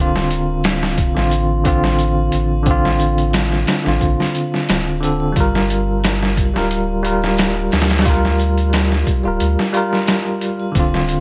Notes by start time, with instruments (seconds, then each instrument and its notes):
Already playing: sub bass D1, tine electric piano D3 C4
0.01 tine electric piano F4
0.16 snare
0.31 closed hi-hat
0.64 snare, closed hi-hat, shaker
0.82 snare, triangle
0.98 kick, closed hi-hat
1.14 sub bass A1, tine electric piano D3 C4, snare
1.19 tine electric piano F4
1.31 closed hi-hat
1.64 tine electric piano D3 C4, kick, closed hi-hat
1.68 tine electric piano F4
1.83 snare, triangle
1.99 closed hi-hat, shaker
2.32 sub bass A1, closed hi-hat, triangle
2.63 tine electric piano D3 C4, kick, closed hi-hat
2.71 tine electric piano F4
2.85 snare
3.00 closed hi-hat
3.18 closed hi-hat
3.33 snare, closed hi-hat, shaker
3.52 snare
3.67 snare, closed hi-hat
3.84 sub bass A1, tine electric piano D3 C4, snare
3.88 tine electric piano F4
4.01 sub bass A1, kick, closed hi-hat
4.20 snare
4.35 closed hi-hat, triangle
4.54 snare
4.69 sub bass D1, snare, closed hi-hat, shaker
5.00 tine electric piano D3 C4, closed hi-hat
5.04 tine electric piano A4
5.20 triangle
5.32 tine electric piano G3, kick
5.36 sub bass G1, tine electric piano F4, closed hi-hat
5.40 tine electric piano A#4
5.55 snare
5.70 closed hi-hat
6.04 snare, closed hi-hat, shaker
6.20 snare, triangle
6.37 kick, closed hi-hat
6.53 sub bass D1, tine electric piano G3 F4 A#4, snare
6.71 closed hi-hat
7.02 tine electric piano G3 F4 A#4, closed hi-hat
7.22 snare, triangle
7.37 snare, closed hi-hat, shaker
7.71 sub bass D2, snare, closed hi-hat, triangle
7.81 snare, closed hi-hat
7.90 snare, closed hi-hat
7.98 tine electric piano G3, snare, closed hi-hat
8.06 tine electric piano F4, kick, closed hi-hat
8.10 tine electric piano A#4
8.25 snare
8.40 closed hi-hat
8.58 closed hi-hat
8.73 snare, closed hi-hat, shaker
8.92 snare
9.07 kick, closed hi-hat
9.23 sub bass D1, tine electric piano G3 F4
9.27 tine electric piano A#4
9.40 sub bass D2, closed hi-hat
9.59 snare
9.73 tine electric piano G3 F4, closed hi-hat, triangle
9.77 tine electric piano A#4
9.93 snare
10.07 snare, closed hi-hat, shaker
10.41 closed hi-hat
10.59 triangle
10.72 sub bass D1, tine electric piano D3, kick, closed hi-hat
10.76 tine electric piano C4 F4
10.94 snare
11.09 closed hi-hat